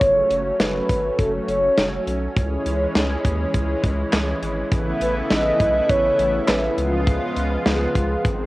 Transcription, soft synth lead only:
Already playing: C#5
0.60 B4
1.19 A4
1.48 C#5
5.01 B4
5.31 D#5
5.90 C#5
6.48 B4

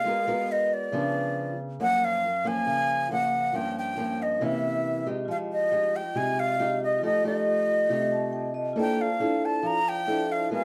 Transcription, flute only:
Already playing: F5
0.52 D#5
0.74 D5
1.82 F#5
2.04 F5
2.48 G#5
3.12 F#5
3.56 G5
3.79 G5
4.22 D#5
4.44 E5
5.31 F5
5.52 D#5
5.96 G5
6.17 G#5
6.40 F5
6.84 D#5
7.05 D#5
7.27 D#5
8.81 G5
9.01 F5
9.45 A5
9.67 A#5
9.89 G5
10.32 F5
10.54 F5

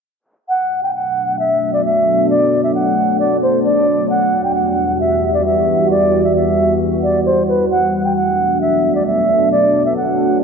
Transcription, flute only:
0.49 F#5
0.83 G5
0.94 F#5
1.39 E5
1.73 D5
1.85 E5
2.30 D5
2.64 E5
2.75 F#5
3.20 D5
3.43 C5
3.65 D5
4.10 F#5
4.44 G5
4.55 F#5
5.00 E5
5.34 D5
5.45 E5
5.91 D5
6.24 E5
6.36 E5
7.03 D5
7.26 C5
7.49 B4
7.71 F#5
8.05 G5
8.16 F#5
8.61 E5
8.95 D5
9.06 E5
9.52 D5
9.86 E5
9.97 F#5

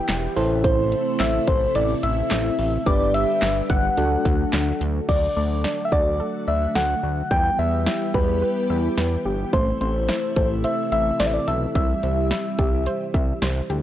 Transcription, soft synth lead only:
Already playing: G5
0.64 C5
1.20 E5
1.48 C5
1.75 D5
2.03 E5
2.87 D5
3.14 E5
3.70 F#5
5.09 D5
5.37 D5
5.85 E5
5.92 D5
6.48 E5
6.76 F#5
7.31 G5
7.59 E5
8.14 B4
9.53 C5
9.81 C5
10.37 C5
10.64 E5
10.92 E5
11.20 D5
11.27 E5
11.34 D5
11.48 E5
11.75 E5

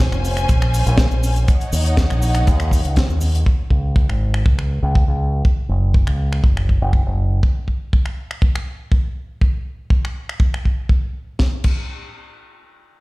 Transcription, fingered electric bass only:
0.12 F1
0.49 A#1
0.86 A#1
1.11 A#1
1.72 D#2
2.10 A#1
2.48 D#2
2.85 C#2
3.09 D#2
3.70 C#2
4.09 G#1
4.46 C#2
4.83 C#2
5.08 C#2
5.69 F#1
6.07 C#2
6.44 F#1
6.82 F#1
7.06 F#1

